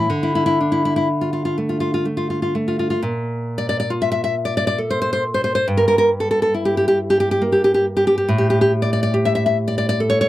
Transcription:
0.10 D3
0.23 E4
0.35 E4
0.46 E4
0.61 D4
0.72 E4
0.85 E4
0.96 E4
1.21 F4
1.33 F4
1.45 F4
1.58 A3
1.69 F4
1.80 F4
1.94 F4
2.05 A3
2.17 F4
2.30 F4
2.42 F4
2.55 A3
2.68 F4
2.79 F4
2.90 F4
3.02 A#2
3.58 D5
3.69 D5
3.80 D5
3.90 F4
4.02 E5
4.12 E5
4.24 E5
4.45 D5
4.57 D5
4.67 D5
4.78 A4
4.90 C5
5.02 C5
5.13 C5
5.34 C5
5.44 C5
5.55 C5
5.68 G2
5.77 A#4
5.88 A#4
5.98 A#4
6.20 A4
6.31 A4
6.42 A4
6.54 E4
6.65 G4
6.77 G4
6.88 G4
7.10 G4
7.20 G4
7.31 G4
7.42 A#3
7.52 G4
7.64 G4
7.74 G4
7.97 G4
8.07 G4
8.18 G4
8.29 A2
8.38 G4
8.50 G4
8.61 G4
8.82 D5
8.93 D5
9.03 D5
9.14 G4
9.25 E5
9.35 E5
9.46 E5
9.68 D5
9.78 D5
9.89 D5
10.00 A4
10.10 C#5
10.21 C#5

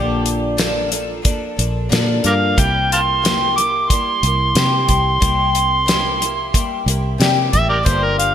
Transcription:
Already playing: A#1 A#2 D3 F3 A#3 D4 G4 A4
0.26 closed hi-hat
0.57 A#2 D3 F3 A#3 D4 A4, snare, closed hi-hat
0.89 F3 A#3 D4 A4, closed hi-hat
1.22 F3 A#3 D4 A4, kick, closed hi-hat
1.56 A#1 F3 A#3 D4 A4, closed hi-hat
1.89 A#2 D3 F3 A#3 D4 A4, snare, closed hi-hat
2.24 G2 A#4 D5 F5, closed hi-hat
2.57 C2 C3 G3 A#3 E4 G4 G5, kick, closed hi-hat
2.92 F5 A5 C6, closed hi-hat
3.22 C3 G3 A#3 E4 G4, closed hi-hat
3.26 snare
3.56 A#3 E4 G4 D6, closed hi-hat
3.88 G3 A#3 E4 C6, kick, closed hi-hat
3.93 G4
4.23 C2 A#3 E4 G4, closed hi-hat
4.55 C3 G3 A#3 E4 G4, snare, closed hi-hat
4.89 C2 C6, kick, closed hi-hat
5.20 C2 C3 G3 A#3 E4 G4, kick, closed hi-hat
5.55 closed hi-hat
5.86 C3 G3 A#3 E4 G4, snare, closed hi-hat
6.20 A#3 E4 G4, closed hi-hat
6.53 G3 A#3 E4 G4, kick, closed hi-hat
6.86 C2 A#3 E4 G4, closed hi-hat
7.18 C3 G3 A#3 E4 G4, snare, closed hi-hat
7.53 A1 E5, kick, closed hi-hat
7.69 G4 A#4 D5
7.83 G1 G2 D3 F3 A#3 D4 G4 C5, kick, closed hi-hat
8.04 A#4
8.19 F5, closed hi-hat

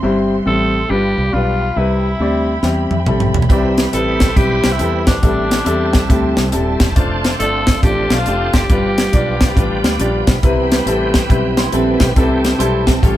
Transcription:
Already playing: C6
0.03 G1 G2 G3 C4 E4 C5 E5 G5
0.46 A1 G3 C4 E4 A4 C5
0.89 G1 G2 G3 D4 F4 G4 B4 D5 F5 B5
1.18 C2
1.32 B1 G3 D4 F4 B4
1.76 C2 C3 G3 C4 E4 B4 E5
2.19 D2 G3 C4 E4 D5
2.63 E2 G3 C4 E4 G4, snare
2.91 F2 E5, high tom
3.00 G5
3.06 A#1 G3 C4 E4 A4 B5, mid tom
3.20 mid tom
3.34 B1, floor tom
3.42 floor tom
3.49 C2 C3 G3 C4 E4 B4 D5, kick, closed hi-hat
3.78 snare, closed hi-hat
3.93 A1 G3 C4 E4 A4 B4, closed hi-hat
4.20 kick, snare, closed hi-hat
4.36 B1 G3 C4 E4 G4 B4, kick, closed hi-hat
4.64 C2, snare, closed hi-hat
4.72 E4
4.79 E2 G3 C4 E4 A4, closed hi-hat
5.07 D4, kick, snare, closed hi-hat
5.22 A1 A2 G3 B3 C4 E4 A4 C5 G5 A5, kick, closed hi-hat
5.30 C4
5.51 snare, closed hi-hat
5.65 E2 G3 C4 E4 A4, closed hi-hat
5.93 kick, snare, closed hi-hat
6.09 D2 G3 C4 E4 A4, kick, closed hi-hat
6.37 C2, snare, closed hi-hat
6.52 D#1 G3 C4 E4 A4, closed hi-hat
6.80 kick, snare, closed hi-hat
6.96 F1 F3 A3 C4 D4 F4 A4 C5 D5 F5 C6, kick, closed hi-hat
7.24 snare, closed hi-hat
7.39 G1 A3 D4 F4 A4 D5, closed hi-hat
7.67 kick, snare, closed hi-hat
7.83 A1 A3 D4 F4 G4 D5, kick, closed hi-hat
8.10 B1, snare, closed hi-hat
8.19 F4
8.26 F1 A3 D4 F4 G4, closed hi-hat
8.53 F#1 G4, kick, snare, closed hi-hat
8.69 G1 G2 F3 G3 B3 D4 F4 G4 B4 G5 B5, kick, closed hi-hat
8.98 snare, closed hi-hat
9.12 B1 G3 D4 F4 D5, kick, closed hi-hat
9.41 kick, snare, closed hi-hat
9.56 A1 G3 D4 F4 B4, kick, closed hi-hat
9.84 D2, snare, closed hi-hat
9.99 A#1 G3 D4 F4 D5, closed hi-hat
10.27 B1, kick, snare, closed hi-hat
10.43 C2 C3 E3 G3 B3 C4 E4 G4 B4 E5 G5, kick, closed hi-hat
10.72 snare, closed hi-hat
10.86 A1 G3 C4 E4 A4, closed hi-hat
11.14 kick, snare, closed hi-hat
11.29 B1 G3 C4 E4 B4, kick, closed hi-hat
11.57 E4 C5, snare, closed hi-hat
11.72 A#1 G3 C4 E4 A4, closed hi-hat
12.00 B1 B3 G4, kick, snare, closed hi-hat
12.16 C2 C3 E3 G3 A3 B3 C4 E4 G4 A4 G5 A5, kick, closed hi-hat
12.23 C4
12.45 snare, closed hi-hat
12.59 B1 G3 C4 E4 A4 C5, closed hi-hat
12.87 C4 A4, kick, snare, closed hi-hat
13.02 A1 A2 F3 G3 A3 C#4 F4 G4 A4 C#5 F5, kick, closed hi-hat
13.08 G4

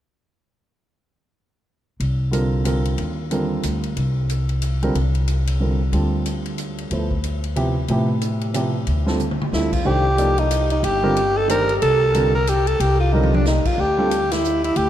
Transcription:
2.00 C2, ride
2.31 D3 G3 C4 F4 A#4, hi-hat pedal, ride
2.64 D3 G3 C4 F4 A#4, hi-hat pedal, ride
2.85 ride
2.98 D#2, ride
3.31 D3 G3 C4 F4 A#4, hi-hat pedal, ride
3.63 D2, hi-hat pedal, ride
3.84 ride
3.97 C2, ride
4.29 hi-hat pedal, ride
4.49 ride
4.62 hi-hat pedal, ride
4.82 D3 G3 C4 F4 A#4, ride
4.95 C2, ride
5.15 ride
5.28 hi-hat pedal, ride
5.47 ride
5.60 D3 G3 C4 F4 A#4
5.92 D2 D3 G3 C4 F4 A4, ride
6.26 hi-hat pedal, ride
6.46 ride
6.58 hi-hat pedal, ride
6.78 ride
6.91 D2 F3 B3 E4 A4 C5, ride
7.11 kick
7.24 hi-hat pedal, ride
7.44 ride
7.56 C3 F3 B3 E4 G4, ride
7.88 A2 C3 F3 B3 E4 G4, ride
8.21 hi-hat pedal, ride
8.41 ride
8.54 C3 F3 B3 E4 G4, hi-hat pedal, ride
8.87 D2, ride
9.06 D3 G3 C4 F4 A4, snare
9.19 hi-hat pedal, mid tom
9.31 mid tom
9.41 mid tom
9.52 D2 D3 G3 C4 E4 F4 A4, snare
9.72 F4, kick, crash
9.85 C2 D#3 A3 D4 G4 C5
10.18 F3 A#3 D#4 A4 D5, hi-hat pedal, ride
10.38 D#4, ride
10.51 hi-hat pedal, ride
10.70 D#4, ride
10.83 G1 G4, ride
11.03 D3 G3 C4 F4 A#4
11.17 ride
11.37 A4
11.48 D#3 A3 D4 G4 A#4 C5, hi-hat pedal, ride
11.69 ride
11.82 C2 A4, ride
12.14 D3 G3 C4 F4 A#4, hi-hat pedal, ride
12.35 A#4
12.47 G4, hi-hat pedal, ride
12.67 A4, ride
12.80 C2 G4, ride
13.00 F4
13.13 D3 G3 C4 D#4 F4 A#4, high tom
13.23 high tom
13.34 D4, high tom
13.45 D#4, snare, hi-hat pedal
13.65 F4, muted upright bass stroke, kick, crash
13.78 D2 G4
13.98 D3 G3 C4 F4 A4
14.11 hi-hat pedal, ride
14.31 E4, snare, ride
14.44 hi-hat pedal
14.64 E4, ride
14.76 D2 G4, ride

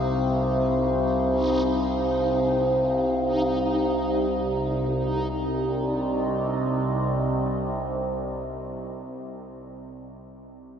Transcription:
Already playing: C2 C3 C4 D#4 G4 C5 F5
4.89 C2 C3 C4
5.07 G4
5.22 D5
5.39 D#5

